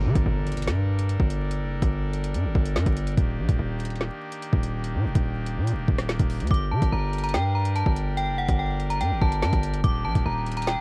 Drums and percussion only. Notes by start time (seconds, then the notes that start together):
0.15 kick, closed hi-hat
0.47 closed hi-hat
0.52 closed hi-hat
0.57 closed hi-hat
0.62 closed hi-hat
0.67 snare, closed hi-hat
0.99 closed hi-hat
1.09 closed hi-hat
1.20 kick
1.30 closed hi-hat
1.51 closed hi-hat
1.82 kick, closed hi-hat
2.13 closed hi-hat
2.24 closed hi-hat
2.34 closed hi-hat
2.55 kick
2.65 closed hi-hat
2.76 snare
2.86 kick, closed hi-hat
2.97 closed hi-hat
3.07 closed hi-hat
3.17 kick, closed hi-hat
3.49 kick, closed hi-hat
3.80 closed hi-hat
3.85 closed hi-hat
3.90 closed hi-hat
3.96 closed hi-hat
4.01 snare, closed hi-hat
4.32 closed hi-hat
4.42 closed hi-hat
4.53 kick
4.63 closed hi-hat
4.84 closed hi-hat
5.15 kick, closed hi-hat
5.46 closed hi-hat
5.67 closed hi-hat
5.88 kick
5.99 cross-stick, snare, closed hi-hat
6.09 snare
6.19 kick, closed hi-hat
6.30 open hi-hat
6.40 closed hi-hat
6.47 kick, closed hi-hat
6.54 closed hi-hat
6.82 kick, closed hi-hat
7.13 closed hi-hat
7.18 closed hi-hat
7.24 closed hi-hat
7.29 closed hi-hat
7.34 snare, closed hi-hat
7.65 closed hi-hat
7.76 closed hi-hat
7.86 kick
7.96 closed hi-hat
8.17 closed hi-hat
8.49 kick, closed hi-hat
8.80 closed hi-hat
8.90 closed hi-hat
9.01 closed hi-hat
9.22 kick
9.32 closed hi-hat
9.42 snare
9.53 kick, closed hi-hat
9.63 closed hi-hat
9.74 closed hi-hat
9.84 kick, closed hi-hat
10.15 kick, closed hi-hat
10.47 closed hi-hat
10.52 closed hi-hat
10.57 closed hi-hat
10.62 closed hi-hat
10.67 snare, closed hi-hat